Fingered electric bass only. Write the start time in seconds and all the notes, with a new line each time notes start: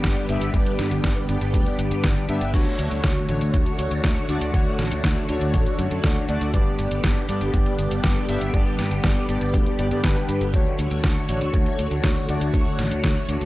0.04 G1
0.29 G1
0.41 G1
0.54 G1
0.79 G2
0.91 G1
1.04 G1
1.29 G1
1.41 G1
1.54 D2
1.79 G1
1.91 G2
2.04 G1
2.29 G2
2.41 G1
2.54 D2
2.79 D2
2.91 D2
3.04 D2
3.29 A1
3.41 D2
3.54 D2
3.79 D2
3.91 D2
4.04 D2
4.29 D2
4.41 D2
4.54 D2
4.79 A1
4.91 D2
5.04 D2
5.29 D2
5.41 D2
5.54 A1
5.79 F#2
5.91 F#2
6.04 D2
6.29 D2
6.41 D2
6.54 G1
6.79 G1
6.91 G1
7.04 G1
7.29 G2
7.41 G1
7.54 G1
7.79 G1
7.91 G1
8.04 G1
8.29 G1
8.42 G1
8.54 G1
8.79 G2
8.91 G1
9.04 G1
9.29 G1
9.41 G1
9.54 D2
9.79 G1
9.91 G2
10.04 G1
10.29 G2
10.41 G1
10.54 D2
10.79 D2
10.91 D2
11.04 D2
11.29 A1
11.41 D2
11.54 D2
11.79 D2
11.91 D2
12.04 D2
12.29 D2
12.41 D2
12.54 D2
12.79 A1
12.91 D2
13.04 D2
13.29 D2
13.41 D2